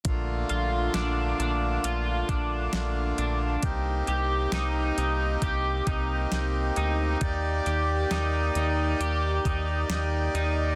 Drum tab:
HH |xxxxxxxx|xxxxxxxx|xxxxxxxx|
SD |--o---o-|--o---o-|--o---o-|
BD |o----o--|o---oo--|o----o--|